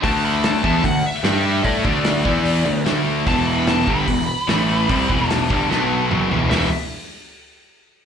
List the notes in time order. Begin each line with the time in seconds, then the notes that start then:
0.04 D2 D3 A3 D4 A5, kick, open hi-hat
0.25 B5
0.44 A5, snare, open hi-hat
0.63 E2 E3 B3 E4 A5, kick
0.84 D2 D3 A3 F#5, kick, open hi-hat
1.06 E5
1.23 G2 G3 D4 G4, snare, open hi-hat
1.63 A2 A3 E4 A4 D5, kick, open hi-hat
1.84 D2 D3 A3 D4, kick
2.04 snare, open hi-hat
2.24 E2 E3 B3 E4, kick
2.45 open hi-hat
2.65 D2 D3 A3
2.86 D2 D3 A3 D4, snare, open hi-hat
3.27 E1 E2 B2 E3 A5, kick, open hi-hat
3.47 B5
3.67 A5, snare, open hi-hat
3.87 G1 G2 D3 G3 B5, kick
4.08 E1 E2 B2, kick, open hi-hat
4.48 A1 A2 E3 A3, snare, open hi-hat
4.88 C2 C3 G3 C4, kick, open hi-hat
5.08 E1 E2 B2 E3, kick
5.29 A5, snare, open hi-hat
5.50 G1 G2 D3 G3, kick
5.69 B1 B2 F#3 B3, snare
6.10 F#1 F#2 C#3 F#3, mid tom
6.30 E1 E2 B2 E3, floor tom
6.50 E1 E2 B2 E3 B3 E4 G4 E5, snare, floor tom, open hi-hat